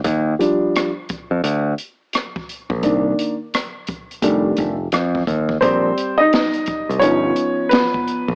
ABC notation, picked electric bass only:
X:1
M:4/4
L:1/16
Q:"Swing 16ths" 1/4=86
K:Eblyd
V:1 name="Picked electric bass" clef=bass
E,,2 z4 z F,, D,,2 z4 z B,,, | C,,2 z6 F,,,2 F,,,2 F,,2 E,,2 | B,,,2 z4 z C,, G,,,2 z4 z ^A,,, |]